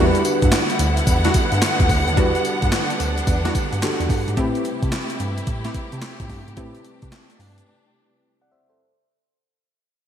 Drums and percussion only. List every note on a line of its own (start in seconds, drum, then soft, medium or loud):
0.15 closed hi-hat medium
0.15 shaker soft
0.25 closed hi-hat medium
0.25 tambourine medium
0.25 shaker medium
0.42 kick medium
0.42 closed hi-hat soft
0.42 shaker medium
0.52 snare loud
0.52 clap medium
0.52 closed hi-hat medium
0.52 tambourine loud
0.52 shaker medium
0.70 closed hi-hat medium
0.70 shaker soft
0.79 closed hi-hat medium
0.79 tambourine medium
0.79 shaker soft
0.97 closed hi-hat medium
0.97 shaker medium
1.07 kick loud
1.07 closed hi-hat medium
1.07 tambourine medium
1.07 shaker medium
1.25 snare medium
1.25 closed hi-hat medium
1.25 shaker medium
1.34 kick loud
1.34 closed hi-hat medium
1.34 tambourine medium
1.34 shaker medium
1.52 closed hi-hat soft
1.52 shaker medium
1.62 snare loud
1.62 clap medium
1.62 closed hi-hat medium
1.62 tambourine loud
1.62 shaker medium
1.80 kick medium
1.80 closed hi-hat medium
1.80 shaker soft
1.89 kick medium
1.89 snare medium
1.89 open hi-hat medium
1.89 tambourine medium
1.89 shaker soft
2.08 closed hi-hat soft
2.08 shaker soft
2.17 kick loud
2.17 closed hi-hat medium
2.17 shaker medium
2.35 closed hi-hat medium
2.35 shaker medium
2.45 closed hi-hat medium
2.45 tambourine medium
2.45 shaker medium
2.62 kick medium
2.62 closed hi-hat soft
2.62 shaker soft
2.72 snare loud
2.72 clap medium
2.72 closed hi-hat medium
2.72 tambourine loud
2.72 shaker medium
2.90 closed hi-hat medium
2.90 shaker soft
3.00 closed hi-hat medium
3.00 tambourine medium
3.00 shaker soft
3.18 closed hi-hat medium
3.18 shaker medium
3.27 kick loud
3.27 closed hi-hat medium
3.27 tambourine medium
3.27 shaker medium
3.45 snare medium
3.45 closed hi-hat medium
3.45 shaker medium
3.55 kick medium
3.55 closed hi-hat medium
3.55 tambourine medium
3.55 shaker medium
3.73 closed hi-hat soft
3.73 shaker medium
3.82 snare loud
3.82 clap medium
3.82 closed hi-hat medium
3.82 tambourine loud
3.82 shaker medium
4.00 closed hi-hat medium
4.00 shaker soft
4.09 kick medium
4.09 snare soft
4.09 open hi-hat medium
4.09 tambourine medium
4.09 shaker soft
4.28 closed hi-hat soft
4.28 shaker soft
4.37 kick loud
4.37 closed hi-hat medium
4.37 shaker medium
4.55 closed hi-hat soft
4.55 shaker soft
4.65 closed hi-hat medium
4.65 shaker medium
4.83 kick medium
4.83 closed hi-hat soft
4.83 shaker medium
4.92 snare loud
4.92 clap medium
4.92 closed hi-hat medium
4.92 shaker medium
5.10 closed hi-hat medium
5.10 shaker soft
5.19 closed hi-hat medium
5.19 shaker soft
5.38 closed hi-hat medium
5.38 shaker medium
5.47 kick loud
5.47 closed hi-hat medium
5.47 shaker medium
5.64 snare medium
5.64 closed hi-hat medium
5.64 shaker medium
5.74 kick loud
5.74 closed hi-hat medium
5.74 shaker medium
5.92 closed hi-hat medium
5.92 shaker medium
6.02 snare loud
6.02 clap medium
6.02 closed hi-hat medium
6.02 shaker medium
6.20 kick medium
6.20 closed hi-hat medium
6.20 shaker soft
6.29 kick medium
6.29 snare medium
6.29 open hi-hat medium
6.29 shaker soft
6.48 closed hi-hat soft
6.48 shaker soft
6.57 kick loud
6.57 closed hi-hat medium
6.57 shaker medium
6.75 closed hi-hat soft
6.75 shaker soft
6.85 closed hi-hat medium
6.85 shaker medium
7.02 kick medium
7.02 closed hi-hat medium
7.02 shaker medium
7.12 snare loud
7.12 clap medium
7.12 closed hi-hat medium
7.12 shaker medium
7.30 closed hi-hat medium
7.30 shaker soft
7.40 open hi-hat medium
7.40 shaker soft
7.58 closed hi-hat medium
7.58 shaker medium